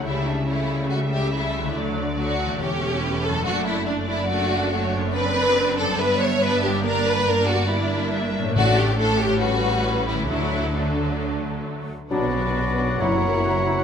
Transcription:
Already playing: C#3 A3 E4
0.02 E4 G4
0.06 C#2 C#3 G3 A3 E5
0.27 D4
0.49 G3 A3 E4 C#5
0.91 F#4 E5
1.13 G4
1.33 G3 A3 E4
1.59 D3
1.63 A3
1.68 D4
1.72 D2 F#4
1.76 D3 F#3 A3 D5
2.18 F#3 A3 F#4
2.43 E3
2.48 A3
2.52 C#4
2.57 E1 G4 A4
2.61 E2 A3 C#4 C#5
3.03 B4
3.23 A4
3.27 F#2
3.32 A3
3.36 D4
3.41 F#1 A4
3.45 F#2 A3 D4 F#4
3.66 E4
3.86 A3 D4 D5
4.08 E4
4.29 A3 D4 F#4
4.72 A3 C#5
4.97 F#2
5.01 C4
5.06 D4
5.10 C4 A4 B4
5.14 D4 D5
5.78 G2 A4
5.86 B3
5.90 D4
5.95 G1 G2 G4
5.99 B3 D4 B4 E5
6.20 C#5
6.41 B3 D4 B4
6.63 G2 G4
6.71 A#3
6.76 D4
6.80 A#3 D4 G4 D5
6.85 A#4
7.07 B4
7.27 A#3 D4 A#4 D5
7.49 F#4
7.70 A#3 D4 E4
8.13 E5
8.38 A2
8.43 A3
8.48 D4
8.52 A2 F#4
8.56 A1 A2 A3 D4 F#4 D5
8.78 G4
8.98 A3 D4 A4 C#5
9.20 A2 G4
9.28 A3
9.32 C#4
9.37 G4 B4
9.41 G3 C#4 F#4
10.08 E4
10.12 D3
10.16 A3
10.21 D4
10.25 F#4
10.29 D2 D3 F#3 A3 E4 A4
10.75 F#3 A3 D4
12.11 B1 B2 F#3 D4 F#4 B4 D5 F#5 B5, tam-tam
12.23 F#3
12.34 B3
12.46 D4
12.57 F#4
12.67 B4
12.79 D5
12.90 F#5
12.99 F#1 F#2 F#3 E4 A#4 C#5 A#5
13.11 C#3
13.22 A#3
13.34 E4
13.45 F#4
13.55 A#4
13.67 E5
13.78 F#5

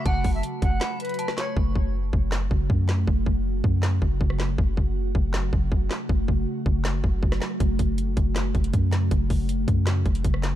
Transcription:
Already playing: C#3 F#3 A3 F#4
0.06 F#1 F#5 A5, kick, closed hi-hat
0.24 F#1, kick, open hi-hat
0.34 E5
0.43 closed hi-hat
0.62 F#1 F#5, kick, closed hi-hat
0.81 B5, snare, clap, closed hi-hat
1.00 B4, closed hi-hat
1.05 closed hi-hat
1.09 closed hi-hat
1.14 closed hi-hat
1.19 A5, closed hi-hat
1.28 cross-stick, snare
1.37 C#5 C#6, cross-stick, snare, clap, closed hi-hat
1.57 F#1 C#3 F#3 A3 F#4, kick
1.75 F#1, kick
2.13 F#1, kick
2.32 snare, clap
2.51 F#1, kick
2.70 F#2, kick
2.89 snare, clap
3.07 F#1, kick
3.26 F#1, kick
3.64 F#2, kick
3.83 snare, clap
4.02 F#1, kick
4.21 F#1, kick
4.30 cross-stick
4.40 snare, clap
4.58 F#1 F#3 A3, kick
4.77 F#1, kick
5.15 F#1, kick
5.34 snare, clap
5.53 F#1, kick
5.72 F#1, kick
5.91 snare, clap
6.09 F#1, kick
6.28 F#1, kick
6.66 F#1, kick
6.85 snare, clap
7.04 F#1, kick
7.23 F#1, kick
7.32 cross-stick, snare
7.42 cross-stick, snare, clap
7.60 F#1 C#3, kick, closed hi-hat
7.79 F#1, kick, closed hi-hat
7.98 closed hi-hat
8.17 F#1, kick, closed hi-hat
8.36 snare, clap, closed hi-hat
8.55 F#1, kick, closed hi-hat
8.64 closed hi-hat
8.74 F#2, kick, closed hi-hat
8.92 snare, clap, closed hi-hat
9.11 F#1, kick, closed hi-hat
9.30 F#1, kick, open hi-hat
9.49 closed hi-hat
9.68 F#2, kick, closed hi-hat
9.87 snare, clap, closed hi-hat
10.06 F#1, kick, closed hi-hat
10.15 closed hi-hat
10.24 F#1, kick, closed hi-hat
10.34 cross-stick
10.43 snare, clap, closed hi-hat

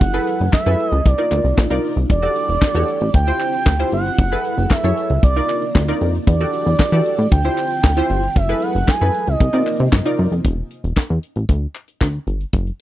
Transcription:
Already playing: E4 F#5
0.01 F#1 F#3 G#4 A4 B4, kick, closed hi-hat
0.13 E4 G#4 A4 B4, closed hi-hat
0.27 closed hi-hat
0.40 F#1, closed hi-hat
0.53 E5, kick, snare, clap
0.66 F#2 E4 G#4 A4 B4
0.80 closed hi-hat
0.90 C#2 D#5, closed hi-hat
1.06 C2 C3 A#3 D4 D#4 F4 D5, kick, closed hi-hat
1.18 D#4 F4 A#4 D5
1.31 D2, clap, closed hi-hat
1.44 C2, closed hi-hat
1.58 A#1, kick, snare, clap
1.70 C2 D#4 F4 A#4 D5
1.84 open hi-hat
1.96 C2, closed hi-hat
2.10 E1 E3 F#4 G4 A4 D5, kick, closed hi-hat
2.22 F#4 G4 A4 D5
2.36 closed hi-hat
2.49 E1, closed hi-hat
2.62 kick, snare, clap
2.75 E2 F#4 G4 A4 C#5, closed hi-hat
2.88 closed hi-hat
3.01 A1, closed hi-hat
3.14 D2 D3 C4 E4 F4 G5, kick, closed hi-hat
3.27 E4 F4 G4 C5
3.40 clap, closed hi-hat
3.53 closed hi-hat
3.66 D2, kick, snare, clap
3.79 E4 F4 G4 C5, closed hi-hat
3.92 G1 F#5, closed hi-hat
4.06 closed hi-hat
4.18 F#1 F#3 G#4 A4 B4, kick, closed hi-hat
4.32 E4 G#4 A4 B4, closed hi-hat
4.45 closed hi-hat
4.58 F#1, closed hi-hat
4.70 F#2 E5, kick, snare, clap
4.84 F#2 E4 G#4 A4 C#5
4.97 closed hi-hat
5.09 C#2, closed hi-hat
5.22 C2 C3 A#3 D4 D#4 F4 D5, kick, closed hi-hat
5.36 D#4 F4 A#4 D5
5.49 clap, closed hi-hat
5.62 closed hi-hat
5.75 D2, kick, snare, clap
5.88 D#4 F4 A#4 D5
6.01 F2, closed hi-hat
6.15 closed hi-hat
6.27 E2 E3 F#4 G4 A4 D5, kick, closed hi-hat
6.40 F#4 G4 A4 D5
6.53 closed hi-hat
6.66 E2, closed hi-hat
6.79 E3, kick, snare, clap
6.92 E3 F#4 G4 A4 D5, closed hi-hat
7.06 closed hi-hat
7.18 A2, closed hi-hat
7.32 D2 D3 C4 E4 F4 G5, kick, closed hi-hat
7.45 E4 F4 G4 C5, closed hi-hat
7.58 clap, closed hi-hat
7.70 closed hi-hat
7.84 D2, kick, snare, clap
7.97 E4 F4 G4 C5
8.09 G1, closed hi-hat
8.23 closed hi-hat
8.36 F#1 F#3 G#4 A4 B4 E5, kick, closed hi-hat
8.49 E4 G#4 A4 B4
8.62 F#5, closed hi-hat
8.75 F#1, closed hi-hat
8.88 F#2 G#5, kick, snare, clap
9.01 F#2 E4 G#4 A4 B4
9.14 closed hi-hat
9.27 C#2 D#5, closed hi-hat
9.40 C2 C3 A#3 C4 D#4 F4, kick, closed hi-hat
9.53 C3 D#4 F4 A#4 D5
9.67 clap, closed hi-hat
9.79 C3, closed hi-hat
9.92 G1, kick, snare, clap
10.05 D#4 F4 A#4 D5, closed hi-hat
10.18 F#2, open hi-hat
10.32 F2, closed hi-hat
10.45 E1, kick, closed hi-hat
10.71 closed hi-hat
10.84 E1, closed hi-hat
10.97 E2, kick, snare, clap
11.10 E2
11.23 closed hi-hat
11.35 A1, closed hi-hat
11.49 D2, kick, closed hi-hat
11.75 clap, closed hi-hat
11.88 closed hi-hat
12.01 D2, kick, snare, clap
12.27 G1, closed hi-hat
12.41 closed hi-hat
12.53 F#1, kick, closed hi-hat
12.67 closed hi-hat

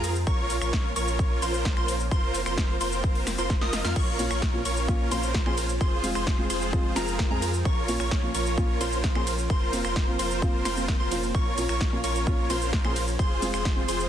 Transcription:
Already playing: F2 F3 G#3 C4 F4 A#4 A#5
0.04 open hi-hat, shaker
0.15 shaker
0.27 A#1 F3 A#3 C#4 F4 A#4 C#5 C#6, kick, shaker
0.50 open hi-hat, shaker
0.61 A#1 F4 A#4 C#5 C#6, finger snap, shaker
0.73 kick, snare, shaker
0.96 A#1 F4 A#4 C#5 C#6, open hi-hat, shaker
1.08 shaker
1.19 kick, shaker
1.42 A#1 F4 A#4 C5 C6, open hi-hat, shaker
1.54 shaker
1.65 kick, snare, shaker
1.77 A#1 F4 A#4 C5 C6, finger snap
1.88 open hi-hat, shaker
2.00 shaker
2.11 F1 F3 A#3 C4 F4 A#4 C5 C6, kick, shaker
2.35 open hi-hat, shaker
2.46 F1 F4 A#4 C5 C6, finger snap, shaker
2.58 kick, snare, shaker
2.81 F1 F4 A#4 C5 C6, open hi-hat, shaker
2.92 shaker
3.04 kick, shaker
3.15 open hi-hat
3.27 finger snap, snare, open hi-hat, shaker
3.38 F1 F4 A#4 C5 C6, shaker
3.50 kick, snare, shaker
3.61 F1 F4 A#4 D#5 D#6, snare
3.73 snare, open hi-hat, shaker
3.85 F2 F4 A#4 F5 F6, snare, shaker
3.96 A#1 A#3 C#4 F4 A#4 C#5 C#6, kick, crash, shaker
4.19 A#2 F3 A#3 C#4 F4, open hi-hat, ride, shaker
4.31 A#1 F4 A#4 C#5 C#6, finger snap, shaker
4.42 kick, snare, shaker
4.53 A#2 F3 A#3 C#4 F4
4.65 A#1 F4 A#4 C#5 C#6, open hi-hat, ride, shaker
4.77 shaker
4.88 A#2 F3 A#3 C#4 F4, kick, shaker
5.11 A#1 A#2 F3 A#3 C#4 F4 A#4 C5 C6, open hi-hat, ride, shaker
5.23 shaker
5.34 kick, snare, shaker
5.46 A#1 A#2 F3 A#3 C#4 F4 G#4 A#4 C5 C6, finger snap
5.58 open hi-hat, ride, shaker
5.69 shaker
5.81 F1 G#3 C4 F4 G#4 C5 C6, kick, shaker
6.03 F3 G#3 C4 F4, open hi-hat, ride, shaker
6.15 F1 F4 G#4 C5 C6, finger snap, shaker
6.27 kick, snare, shaker
6.38 F3 G#3 C4 F4
6.50 F1 F4 G#4 C5 C6, open hi-hat, ride, shaker
6.62 shaker
6.72 F3 G#3 C4 F4, kick, shaker
6.96 F1 F3 G#3 C4 F4 G#4 A#4 A#5, finger snap, snare, open hi-hat, ride, shaker
7.08 shaker
7.19 kick, snare, shaker
7.30 F2 F3 G#3 C4 F4 G#4 A#4 A#5
7.42 open hi-hat, ride, shaker
7.54 shaker
7.65 A#1 A#3 C#4 F4 A#4 C#5 C#6, kick, shaker
7.88 A#2 F3 A#3 C#4 F4, open hi-hat, ride, shaker
8.00 A#1 F4 A#4 C#5 C#6, finger snap, shaker
8.11 kick, snare, shaker
8.22 A#2 F3 A#3 C#4 F4
8.35 A#1 F4 A#4 C#5 C#6, open hi-hat, ride, shaker
8.46 shaker
8.57 A#2 F3 A#3 C#4 F4, kick, shaker
8.80 A#1 A#2 F3 A#3 C#4 F4 A#4 C5 C6, open hi-hat, ride, shaker
8.92 shaker
9.04 kick, snare, shaker
9.15 A#1 A#2 F3 A#3 C#4 F4 G#4 A#4 C5 C6, finger snap
9.27 open hi-hat, ride, shaker
9.39 shaker
9.50 F1 C4 F4 A#4 C5 C6, kick, shaker
9.73 F3 A#3 C4 F4, open hi-hat, ride, shaker
9.85 F1 F4 A#4 C5 C6, finger snap, shaker
9.96 kick, snare, shaker
10.07 F3 A#3 C4 F4
10.19 F1 F4 A#4 C5 C6, open hi-hat, ride, shaker
10.31 shaker
10.42 F3 A#3 C4 F4, kick, shaker
10.65 F1 F4 A#4 C5 C6, finger snap, snare, open hi-hat, ride, shaker
10.76 F3 A#3 C4 F4, shaker
10.88 kick, snare, shaker
11.00 F1 F4 A#4 C5 C6
11.11 A#2 F3 A#3 C#4 F4, open hi-hat, ride, shaker
11.23 shaker
11.35 A#1 C#4 F4 A#4 C#5 C#6, kick, shaker
11.57 A#2 F3 A#3 C#4 F4, open hi-hat, ride, shaker
11.69 A#1 F4 A#4 C#5 C#6, finger snap, shaker
11.81 kick, snare, shaker
11.92 A#2 F3 A#3 C#4 F4
12.04 A#1 F4 A#4 C#5 C#6, open hi-hat, ride, shaker
12.15 shaker
12.26 A#2 F3 A#3 C#4 F4, kick, shaker
12.49 A#1 A#2 F3 A#3 C#4 F4 A#4 C5 C6, open hi-hat, ride, shaker
12.62 shaker
12.73 kick, snare, shaker
12.84 A#1 A#2 F3 A#3 C#4 F4 G#4 A#4 C5 C6, finger snap
12.96 open hi-hat, ride, shaker
13.08 shaker
13.19 F1 F3 G#3 C4 F4 G#4 C5 C6, kick, shaker
13.42 F3 G#3 C4 F4, open hi-hat, ride, shaker
13.54 F1 F4 G#4 C5 C6, finger snap, shaker
13.65 kick, snare, shaker
13.76 F3 G#3 C4 F4
13.88 F1 F4 G#4 C5 C6, open hi-hat, ride, shaker
14.00 shaker

